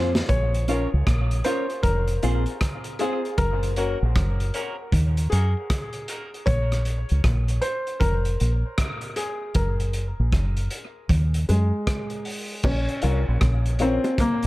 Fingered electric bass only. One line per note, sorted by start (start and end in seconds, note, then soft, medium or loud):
0.00 0.21 F2 loud
0.30 0.86 A#1 medium
0.94 1.06 C#2 medium
1.07 1.41 A#1 medium
1.84 2.18 F1 medium
2.24 2.45 A#1 medium
3.39 3.95 F#1 medium
4.03 4.14 A#1 medium
4.16 4.50 F#1 medium
4.93 5.27 D#2 medium
5.33 5.54 F#2 medium
6.47 7.03 A#1 loud
7.11 7.23 C#2 medium
7.25 7.59 A#1 medium
8.01 8.36 F1 medium
8.41 8.62 A#1 medium
9.56 10.12 F#1 medium
10.20 10.32 A#1 medium
10.33 10.67 F#1 medium
11.10 11.44 D#2 medium
11.49 11.71 F#2 medium
12.65 12.86 A#1 loud
13.04 13.25 C2 loud
13.29 13.41 A#1 medium
13.42 13.98 A#1 medium